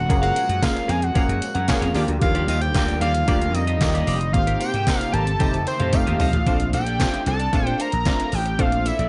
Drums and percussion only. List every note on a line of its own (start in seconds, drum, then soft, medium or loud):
0.10 kick loud
0.10 closed hi-hat loud
0.10 tambourine soft
0.23 closed hi-hat medium
0.36 closed hi-hat medium
0.36 tambourine medium
0.49 closed hi-hat medium
0.63 kick loud
0.63 snare loud
0.63 clap medium
0.63 closed hi-hat medium
0.63 tambourine medium
0.77 closed hi-hat soft
0.89 closed hi-hat medium
0.89 tambourine soft
1.02 closed hi-hat medium
1.15 kick loud
1.15 closed hi-hat medium
1.15 tambourine medium
1.29 closed hi-hat medium
1.42 closed hi-hat medium
1.42 tambourine medium
1.55 closed hi-hat medium
1.68 kick loud
1.68 snare loud
1.68 clap medium
1.68 closed hi-hat medium
1.68 tambourine medium
1.82 closed hi-hat medium
1.95 open hi-hat medium
1.95 tambourine medium
2.08 closed hi-hat soft
2.21 kick loud
2.21 closed hi-hat medium
2.21 tambourine soft
2.35 closed hi-hat medium
2.48 closed hi-hat medium
2.48 tambourine medium
2.62 closed hi-hat soft
2.74 kick loud
2.74 snare loud
2.74 clap medium
2.74 closed hi-hat medium
2.74 tambourine medium
2.88 closed hi-hat soft
3.01 closed hi-hat medium
3.01 tambourine soft
3.15 closed hi-hat medium
3.28 kick loud
3.28 closed hi-hat medium
3.28 tambourine medium
3.42 closed hi-hat medium
3.55 closed hi-hat medium
3.55 tambourine medium
3.67 closed hi-hat soft
3.81 kick loud
3.81 snare loud
3.81 clap medium
3.81 closed hi-hat medium
3.81 tambourine medium
3.95 closed hi-hat medium
4.07 open hi-hat medium
4.07 tambourine medium
4.21 closed hi-hat soft
4.34 kick loud
4.34 closed hi-hat medium
4.47 closed hi-hat medium
4.61 closed hi-hat medium
4.61 tambourine medium
4.74 closed hi-hat medium
4.87 kick loud
4.87 snare loud
4.87 clap medium
4.87 closed hi-hat medium
4.87 tambourine loud
5.01 closed hi-hat soft
5.14 closed hi-hat medium
5.27 closed hi-hat medium
5.40 kick loud
5.40 closed hi-hat medium
5.40 high tom medium
5.40 tambourine medium
5.53 closed hi-hat medium
5.53 high tom medium
5.67 closed hi-hat medium
5.67 tambourine medium
5.80 closed hi-hat medium
5.80 mid tom medium
5.93 kick loud
5.93 closed hi-hat medium
5.93 mid tom medium
5.93 tambourine medium
6.07 closed hi-hat medium
6.20 floor tom loud
6.20 open hi-hat medium
6.20 tambourine medium
6.33 closed hi-hat soft
6.33 floor tom medium
6.47 kick loud
6.47 closed hi-hat medium
6.47 tambourine soft
6.60 closed hi-hat medium
6.73 closed hi-hat medium
6.73 tambourine medium
6.86 closed hi-hat medium
7.00 kick medium
7.00 snare loud
7.00 clap medium
7.00 closed hi-hat medium
7.00 tambourine medium
7.14 closed hi-hat soft
7.26 closed hi-hat medium
7.26 tambourine soft
7.40 closed hi-hat medium
7.53 kick loud
7.53 closed hi-hat medium
7.53 tambourine soft
7.67 closed hi-hat medium
7.79 closed hi-hat medium
7.79 tambourine medium
7.92 closed hi-hat soft
8.05 kick loud
8.05 snare loud
8.05 clap medium
8.05 closed hi-hat medium
8.05 tambourine medium
8.20 closed hi-hat medium
8.32 open hi-hat medium
8.32 tambourine medium
8.46 closed hi-hat soft
8.59 kick loud
8.59 closed hi-hat medium
8.72 closed hi-hat medium
8.85 closed hi-hat medium
8.85 tambourine medium
8.99 closed hi-hat soft